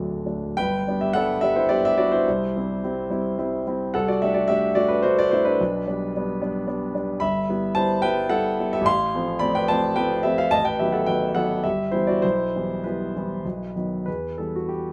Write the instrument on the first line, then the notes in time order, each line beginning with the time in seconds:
grand piano
Already playing: D1 D2 F#3 A3 D4 F#4 A4 D5
0.25 F#3 A3 D4
0.57 G1 B4 G5
0.88 G3 B3 D4
1.01 G4 E5
1.13 G3 B3 D4 A4 F#5
1.41 G3 B3 D4 G4 E5
1.56 E4 C5
1.69 G3 B3 D4 G4 D5
1.85 G4 E5
1.98 G3 B3 D4 F#4 D5
2.12 E4 C5
2.28 C2
2.57 G3 C4 E4
2.84 G3 C4 E4
3.10 G3 C4 E4
3.38 G3 C4 E4
3.67 G3 C4 E4
3.94 C2 A4 F#5
4.08 F#4 D5
4.22 A3 D4 G4 E5
4.34 F#4 D5
4.48 A3 D4 G4 E5
4.75 A3 D4 F#4 D5
4.88 D4 B4
5.03 A3 D4 F#4 C5
5.19 F#4 D5
5.31 A3 D4 E4 C5
5.45 D4 B4
5.61 B1
5.87 G3 B3 D4
6.16 G3 B3 D4
6.41 G3 B3 D4
6.67 G3 B3 D4
6.94 G3 B3 D4
7.20 G1 E5 B5
7.49 G3 B3 E4
7.75 G3 B3 E4 C5 A5
8.02 G3 B3 E4 B4 G5
8.29 G3 B3 E4 A4 F#5
8.60 G3 B3 E4
8.73 G4 E5
8.81 A1
8.86 F5 C6
9.15 F3 A3 C4
9.39 F3 A3 C4 D5 B5
9.55 B4 G5
9.68 F3 A3 C4 C5 A5
9.96 F3 A3 C4 B4 G5
10.23 F3 A3 C4 G4 E5
10.38 A4 F5
10.51 A1 D#5 A5
10.65 B4 G5
10.79 D#3 F#3 B3 G4 E5
10.92 A4 F#5
11.06 D#3 F#3 B3 B4 G5
11.35 D#3 F#3 B3 A4 F#5
11.64 G1 G4 E5
11.91 E3 G3 B3 E4 C5
12.07 F#4 D5
12.22 B1 E4 C5
12.56 E3 G3 B3
12.84 E3 G3 B3 E4 B4
13.16 E3 G3 B3
13.45 B1
13.76 D#3 F#3 B3
14.06 E2 B4
14.38 E3 G3 B3 A4
14.56 F#4
14.69 G4